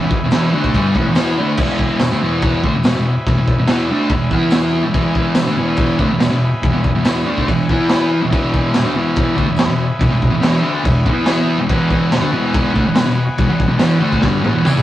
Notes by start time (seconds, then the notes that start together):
Already playing: G#4 B4 E5
0.01 E2 B2
0.11 kick
0.24 E2 B2
0.31 E2 B2 E3, snare, tambourine, crash
0.52 D3 A3 D4 F#5
0.64 kick
0.74 G2 D3 G3 E5, kick, crash
0.91 F#5
0.95 A2 E3, kick
1.07 E2 B2
1.15 E3 B3 E4 G#5, snare, tambourine, crash
1.31 B5
1.39 D3 A3 D4
1.51 G#4 B4
1.57 E2 B2 E3 E5, kick, crash
1.79 kick
2.00 E2 B2, snare, tambourine, crash
2.11 D3 A3
2.22 E2 B2 E3
2.42 kick, crash
2.63 D3 A3, kick
2.75 E2 B2
2.83 E2 B2, snare, tambourine, crash
2.96 E2 B2
3.27 E2 B2, kick, crash
3.38 E2 B2
3.48 kick
3.58 E2 B2
3.67 E2 B2 E3, snare, tambourine, crash
3.91 D3 A3 D4
4.09 E2 B2, kick, crash
4.31 E3 B3 E4, kick
4.50 snare, tambourine, crash
4.84 E2 B2
4.90 E2 B2 G#4 B4 E5, kick
4.95 E3, crash
5.15 kick
5.35 E2 B2, snare, tambourine, crash
5.47 D3 A3
5.57 E2 B2 E3
5.77 kick, crash
5.99 D3 A3, kick
6.09 E2 B2
6.19 E2 B2, snare, tambourine, crash
6.31 E2 B2
6.63 E2 B2, kick, crash
6.72 E2 B2
6.84 kick
6.95 E2 B2
7.05 E2 B2 E3, snare, tambourine, crash
7.23 D3 A3 D5
7.28 D4
7.38 kick
7.45 E5, kick, crash
7.49 E2 B2
7.65 G#5
7.70 E3 B3 E4, kick
7.85 B5
7.90 snare, tambourine, crash
8.22 E2 B2
8.28 E2 G#4 B4 E5
8.32 B2 E3, kick, crash
8.54 kick
8.74 E2 B2, snare, tambourine, crash
8.84 D3 A3
8.95 E2 B2 E3
9.16 kick, crash
9.36 D3 A3, kick
9.47 E2 B2
9.56 E2 B2, snare, tambourine, crash
9.68 E2 B2
9.99 E2 B2, kick, crash
10.10 E2 B2
10.22 kick
10.30 E2 B2
10.40 E2 B2 E3, snare, tambourine, crash
10.62 D3 A3 D4
10.83 E2 B2, kick, crash
11.06 E3 B3 E4, kick
11.26 snare, tambourine, crash
11.58 E2 B2
11.67 E2 B2 E3 G#4 B4 F#5, kick, crash
11.91 kick
12.12 E2 B2, snare, tambourine, crash
12.21 D3 A3
12.32 E2 B2 E3
12.54 kick, crash
12.73 D3 A3, kick
12.86 E2 B2
12.94 E2 B2, snare, tambourine, crash
13.05 E2 B2
13.38 E2 B2, kick, crash
13.49 E2 B2
13.60 kick
13.68 E2 B2
13.78 E2 B2 E3, snare, tambourine, crash
14.00 D3 A3 D4
14.13 kick
14.21 G2 D3 G3, kick, snare
14.42 A2 E3, high tom
14.53 E2 B2
14.64 E3 B3 E4, mid tom, tambourine
14.77 mid tom